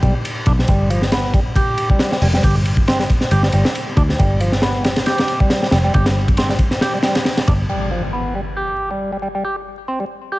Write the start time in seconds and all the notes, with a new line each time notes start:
0.02 B1 G3, kick, ride
0.25 ride
0.46 B1 D4, kick, ride
0.59 snare
0.68 G1 G3, kick, ride
0.90 F3, ride
1.02 snare
1.12 B3, snare, ride
1.34 G3, kick, ride
1.56 G4, kick, ride
1.77 ride
1.90 G3, kick
1.99 snare, ride
2.12 G3, snare
2.22 F1 G3, open hi-hat
2.34 G3, snare
2.43 G1 G4, kick, ride
2.56 ride
2.65 ride
2.77 kick
2.88 C4, snare, ride
2.99 G3, snare
3.10 kick, ride
3.21 snare
3.31 G1 G4, ride
3.43 G3, snare
3.52 G1 G3, ride
3.65 snare
3.75 ride
3.97 D2 D4, kick, ride
4.09 snare
4.19 G1 G3, kick, ride
4.40 F3, ride
4.52 snare
4.62 B3, snare, ride
4.84 G3, snare, ride
4.96 snare, ride
5.06 G4, snare, ride
5.18 snare, ride
5.28 ride
5.40 G3, kick
5.50 snare, ride
5.62 G3, snare
5.71 F1 G3, snare, ride
5.84 G3
5.94 G1 G4, kick, ride
6.06 snare, ride
6.28 kick, ride
6.37 C4, snare, ride
6.49 G3, snare
6.59 kick, ride
6.71 snare
6.81 G4, snare, ride
6.94 G3
7.03 G3, snare, ride
7.15 snare, ride
7.25 snare, ride
7.37 snare, ride
7.47 G1 D4, kick, ride
7.69 G3, impact
7.91 F3
8.13 B3
8.35 G3
8.57 G4
8.91 G3
9.12 G3
9.22 G3
9.35 G3
9.45 G4
9.88 C4
10.00 G3
10.32 G4